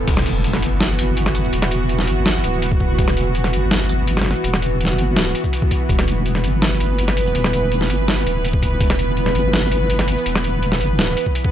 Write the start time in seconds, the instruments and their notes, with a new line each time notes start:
0.07 wobble bass E1, synth drone E3 B3 F#4, kick, closed hi-hat, crash, impact
0.17 snare
0.26 closed hi-hat, shaker
0.44 closed hi-hat
0.53 snare
0.62 wobble bass G1, closed hi-hat, shaker
0.81 snare, closed hi-hat
0.99 closed hi-hat
1.17 closed hi-hat
1.26 snare
1.35 closed hi-hat
1.44 wobble bass E1, shaker
1.53 wobble bass E1, closed hi-hat
1.62 snare
1.71 closed hi-hat, shaker
1.89 closed hi-hat
1.99 snare
2.07 wobble bass G1, closed hi-hat
2.26 snare, closed hi-hat
2.44 wobble bass D1, closed hi-hat
2.53 shaker
2.62 closed hi-hat
2.71 kick
2.80 kick
2.98 wobble bass E1, kick, closed hi-hat
3.08 snare
3.17 closed hi-hat, shaker
3.35 closed hi-hat
3.44 snare
3.53 wobble bass G1, closed hi-hat, shaker
3.71 snare, closed hi-hat
3.89 closed hi-hat
4.08 closed hi-hat
4.17 snare
4.21 snare
4.26 snare
4.31 snare
4.35 shaker
4.44 wobble bass E1, closed hi-hat
4.54 snare
4.62 closed hi-hat
4.81 closed hi-hat
4.85 snare
4.98 wobble bass G1, closed hi-hat
5.16 wobble bass D1, snare, closed hi-hat
5.35 closed hi-hat
5.44 kick, shaker
5.53 closed hi-hat
5.62 kick
5.71 kick, closed hi-hat, shaker
5.89 wobble bass E1, synth drone B4, kick, closed hi-hat
5.99 snare
6.08 closed hi-hat, shaker
6.26 closed hi-hat
6.35 snare
6.44 wobble bass G1, closed hi-hat, shaker
6.62 snare, closed hi-hat
6.80 closed hi-hat
6.99 closed hi-hat
7.08 snare
7.17 closed hi-hat
7.26 wobble bass E1, shaker
7.35 wobble bass E1, closed hi-hat
7.44 snare
7.53 closed hi-hat, shaker
7.72 closed hi-hat
7.81 snare
7.89 wobble bass G1, closed hi-hat
8.08 snare, closed hi-hat
8.25 wobble bass D1, closed hi-hat
8.45 closed hi-hat
8.53 kick
8.62 kick, closed hi-hat
8.81 wobble bass E1, kick, closed hi-hat
8.90 snare
8.99 closed hi-hat, shaker
9.17 closed hi-hat
9.26 snare
9.35 wobble bass G1, closed hi-hat, shaker
9.53 snare, closed hi-hat
9.72 closed hi-hat
9.90 closed hi-hat
9.99 snare
10.08 closed hi-hat
10.17 shaker
10.26 wobble bass E1, closed hi-hat
10.35 snare
10.44 closed hi-hat, shaker
10.63 closed hi-hat
10.72 snare
10.81 wobble bass G1, closed hi-hat, shaker
10.99 wobble bass D1, snare, closed hi-hat
11.17 closed hi-hat
11.26 kick
11.35 closed hi-hat
11.45 kick